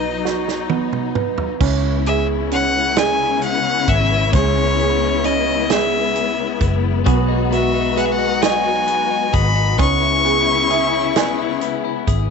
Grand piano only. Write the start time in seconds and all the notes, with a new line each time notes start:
Already playing: B3 F#4 B4
0.25 F#4
0.70 B3
1.15 B4
1.60 C#4
2.07 G#4
2.52 C#4
2.97 G#4
4.34 G#3
4.80 G#4
5.25 C#4
5.70 G#4
7.07 B3
7.52 F#4
7.97 B4
8.43 D#5
9.79 C#4
10.25 G#4
10.71 E5
11.16 G#5